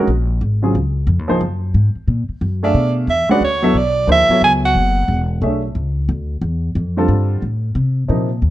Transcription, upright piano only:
0.62 0.73 C#3 medium
0.62 0.73 F#3 medium
0.62 0.73 C4 medium
0.62 0.73 F4 medium
0.62 0.74 G#4 medium
1.28 1.39 F3 medium
1.28 1.39 A#3 medium
1.28 1.40 D#4 medium
1.28 1.40 G#4 medium
1.28 1.40 C5 medium
2.63 3.06 A3 medium
2.63 3.06 D4 medium
2.63 3.06 G#4 medium
2.63 3.06 E5 medium
2.63 3.06 F5 medium
3.29 3.40 G#3 medium
3.29 3.40 C#4 medium
3.29 3.41 F#4 medium
3.29 3.41 B4 medium
3.29 3.41 D5 medium
3.62 3.73 F#3 medium
3.62 3.74 B3 medium
3.62 3.74 E4 medium
3.62 3.74 A4 medium
3.62 3.74 E5 medium
4.07 4.27 F3 medium
4.07 4.27 A#3 medium
4.07 4.27 D#4 medium
4.07 4.27 G#4 medium
4.07 4.28 C5 medium
4.30 5.01 F#3 medium
4.30 5.01 B3 medium
4.30 5.01 E4 medium
4.30 5.02 A4 medium
4.30 5.02 C#5 medium
5.42 5.61 A3 medium
5.42 5.61 D4 soft
5.42 5.61 G#4 soft
5.42 5.62 C#5 soft
5.42 5.62 E5 medium
6.97 7.40 D3 medium
6.97 7.40 G3 medium
6.97 7.40 C4 medium
6.97 7.40 F4 medium
6.97 7.41 A4 medium
8.08 8.28 C3 medium
8.08 8.28 F3 medium
8.08 8.28 A#3 medium
8.08 8.28 D#4 medium

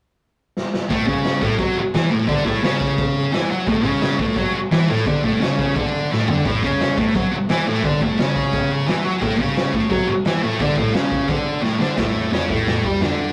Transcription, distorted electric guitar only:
0.90 1.06 A2 medium
0.90 1.07 A3 loud
1.07 1.41 C#3 medium
1.07 1.42 C#4 loud
1.41 1.58 A2 medium
1.41 1.59 A3 loud
1.58 1.75 F#3 medium
1.58 1.76 F#4 loud
1.77 muted distorted electric guitar stroke medium
1.94 2.11 E3 medium
1.94 2.11 E4 medium
2.11 2.27 A2 medium
2.11 2.28 A3 medium
2.28 2.45 D3 loud
2.28 2.45 D4 loud
2.45 2.62 A2 loud
2.45 2.63 A3 loud
2.63 3.32 C#3 medium
2.63 3.33 C#4 loud
3.33 3.49 E3 medium
3.33 3.50 E4 loud
3.50 3.67 F#3 medium
3.50 3.68 F#4 medium
3.68 3.85 A2 loud
3.68 3.86 A3 loud
3.85 4.19 C#3 medium
3.85 4.19 C#4 loud
4.19 4.36 A2 medium
4.19 4.37 A3 loud
4.36 4.53 F#3 medium
4.36 4.54 F#4 loud
4.54 muted distorted electric guitar stroke medium
4.71 4.88 E3 medium
4.71 4.89 E4 medium
4.89 5.06 A2 medium
4.89 5.06 A3 medium
5.06 5.23 D3 loud
5.06 5.24 D4 loud
5.24 5.39 A2 medium
5.24 5.40 A3 loud
5.40 5.75 C#3 loud
5.40 5.75 C#4 loud
5.76 6.10 D3 medium
5.76 6.10 D4 loud
6.11 6.28 A2 medium
6.11 6.28 A3 loud
6.29 6.45 D3 medium
6.29 6.46 D4 medium
6.46 6.62 A2 loud
6.46 6.63 A3 loud
6.63 6.97 C#3 medium
6.63 6.97 C#4 loud
6.98 7.14 A2 medium
6.98 7.15 A3 loud
7.15 7.31 F#3 loud
7.15 7.32 F#4 loud
7.33 muted distorted electric guitar stroke medium
7.50 7.66 E3 medium
7.50 7.66 E4 loud
7.67 7.83 A2 medium
7.67 7.84 A3 medium
7.84 8.01 D3 loud
7.84 8.01 D4 loud
8.02 8.18 A2 loud
8.02 8.19 A3 loud
8.19 8.87 C#3 medium
8.19 8.88 C#4 loud
8.87 9.04 E3 medium
8.87 9.05 E4 loud
9.04 9.21 F#3 medium
9.04 9.21 F#4 medium
9.21 9.39 A2 loud
9.21 9.40 A3 loud
9.39 9.73 C#3 medium
9.39 9.74 C#4 loud
9.74 9.90 A2 medium
9.74 9.90 A3 loud
9.91 10.07 F#3 loud
9.91 10.08 F#4 loud
10.09 muted distorted electric guitar stroke medium
10.26 10.42 E3 medium
10.26 10.43 E4 medium
10.42 10.59 A2 medium
10.42 10.60 A3 medium
10.60 10.77 D3 medium
10.60 10.77 D4 loud
10.77 10.94 A2 medium
10.77 10.94 A3 loud
10.94 11.28 C#3 loud
10.94 11.29 C#4 loud
11.28 11.62 D3 loud
11.28 11.63 D4 loud
11.62 11.80 A2 medium
11.62 11.80 A3 medium
11.80 11.97 D3 medium
11.80 11.98 D4 medium
11.98 12.32 A2 medium
11.98 12.32 A3 loud
12.32 12.49 C#3 loud
12.32 12.50 C#4 loud
12.50 12.84 A2 medium
12.50 12.84 A3 medium
12.84 13.01 G3 medium
12.84 13.02 G4 medium
13.02 13.33 D3 medium
13.02 13.33 D4 medium

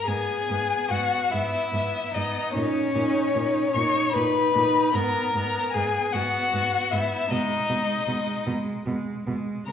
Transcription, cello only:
0.08 0.16 G#2 soft
0.50 0.58 G#2 soft
0.91 0.99 G#2 soft
1.33 1.41 G#2 soft
1.73 1.81 G#2 soft
2.15 2.23 G#2 soft
2.56 2.64 A#2 soft
2.95 3.03 A#2 soft
3.35 3.43 A#2 soft
3.75 3.83 A#2 soft
4.15 4.23 A#2 soft
4.55 4.63 A#2 soft
4.95 5.03 G#2 soft
5.35 5.43 G#2 soft
5.75 5.83 G#2 soft
6.14 6.22 G#2 soft
6.54 6.62 G#2 soft
6.93 7.01 G#2 soft
7.31 7.39 B2 soft
7.70 7.78 B2 soft
8.08 8.16 B2 soft
8.47 8.55 B2 soft
8.86 8.94 B2 soft
9.27 9.35 B2 soft
9.68 9.72 C#3 medium

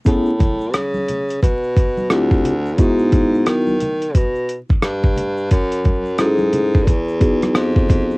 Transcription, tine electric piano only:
0.05 0.32 B3 medium
0.05 0.32 C#4 medium
0.05 0.32 E4 medium
0.05 0.33 G#4 medium
2.10 2.53 C4 medium
2.10 2.53 E4 medium
2.10 2.53 F4 medium
2.10 2.54 G4 medium
2.78 3.75 B3 medium
2.78 3.76 D#4 medium
2.78 3.76 E4 medium
2.78 3.76 F#4 medium
6.18 6.87 C#4 medium
6.18 6.88 E4 medium
6.18 6.28 F#4 medium
6.18 6.87 A4 medium
6.27 6.91 G#4 medium
7.20 8.18 B3 medium
7.20 8.18 D#4 medium
7.20 8.18 F#4 medium
7.20 8.18 G#4 medium

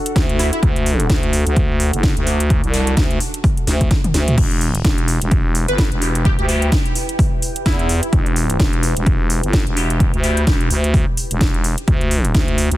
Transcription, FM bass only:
0.16 0.51 D2 loud
0.63 1.08 D2 loud
1.10 1.44 D2 loud
1.46 1.91 D2 medium
1.93 2.15 F#1 medium
2.17 2.62 D2 medium
2.64 2.95 C2 loud
2.97 3.19 D2 medium
3.67 3.89 D2 loud
4.14 4.36 D2 loud
4.38 4.83 E1 loud
4.85 5.19 E1 medium
5.21 5.66 E1 loud
5.68 5.90 G1 medium
5.92 6.37 E1 medium
6.39 6.71 D2 loud
7.66 8.01 E2 medium
8.13 8.58 E1 loud
8.60 8.94 E1 loud
8.97 9.41 E1 loud
9.43 9.65 G1 loud
9.67 10.12 E1 loud
10.14 10.45 D2 medium
10.47 10.69 E1 loud
10.70 11.05 D2 loud
11.31 11.76 E1 medium
11.88 12.33 D2 loud
12.35 12.69 D2 medium
12.71 12.77 D2 loud

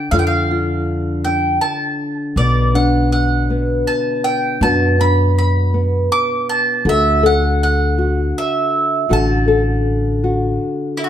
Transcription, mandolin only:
0.00 0.11 G5 medium
0.11 0.18 F5 medium
0.19 0.26 G5 medium
0.27 1.21 F5 medium
1.25 1.61 G5 medium
1.61 2.14 A5 medium
2.37 2.75 D5 medium
2.75 3.09 F#5 medium
3.12 3.87 F#5 medium
3.87 4.24 A5 medium
4.24 4.62 G5 medium
4.63 5.00 A5 medium
5.01 5.37 B5 medium
5.38 6.12 B5 medium
6.12 6.49 D6 loud
6.49 6.84 A5 medium
6.89 7.26 E5 medium
7.26 7.62 F#5 medium
7.63 8.39 F#5 medium
8.38 9.14 E5 medium
9.13 10.57 A5 medium
10.97 11.04 E4 medium
11.04 11.09 F#4 medium

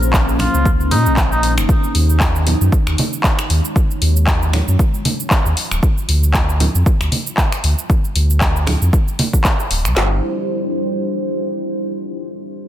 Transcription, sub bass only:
0.00 0.48 A#1 loud
0.54 0.93 C#2 loud
0.91 1.07 A#2 medium
1.06 1.59 A#1 medium
1.58 1.66 F1 medium
1.95 2.55 D#2 loud
2.61 2.69 F#2 loud
2.87 2.95 D#2 medium
3.50 3.61 D#2 medium
4.02 4.62 D#2 loud
4.68 4.76 F#2 loud
5.46 5.54 D#2 medium
5.71 5.80 D1 loud
6.09 6.69 D2 loud
6.75 6.83 F2 loud
7.01 7.09 D2 medium
7.64 7.74 D2 medium
8.15 8.76 D2 medium
8.82 8.90 F2 loud
9.71 9.87 D1 medium
9.85 9.94 C2 loud
9.96 10.21 G1 loud

